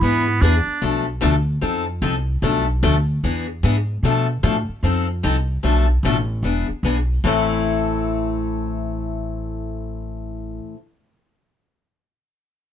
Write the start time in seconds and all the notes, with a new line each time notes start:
Already playing: E4
0.01 G#2 E3 B3 D4 G#4
0.41 E2 E3 B3 D4 G#4
0.67 muted upright bass stroke
0.81 B1 B2 F3 A3 D4 A4
1.21 D2 B2 F3 A3 D4 A4
1.61 F2 F3 C4 D#4 A4
2.02 C2 F3 C4 D#4 A4
2.42 B1 B2 F3 A3 D4 A4
2.83 D2 B2 F3 A3 D4 A4
3.23 E2 E3 B3 D4 G#4
3.63 G#2 E3 B3 D4 G#4
4.03 B2 F3 A3 D4 A4
4.43 A2 B2 F3 A3 D4 A4
4.69 muted upright bass stroke
4.83 F2 F3 C4 D#4 A4
5.23 C2 F3 C4 D#4 A4
5.63 B1 B2 F3 A3 D4 A4
6.03 A1 B2 F3 A3 D4 A4
6.43 E1 E3 B3 D4 G#4
6.69 muted upright bass stroke
6.83 B1 E3 B3 D4 G#4
7.24 A1 A2 E3 A3 C4 E4 A4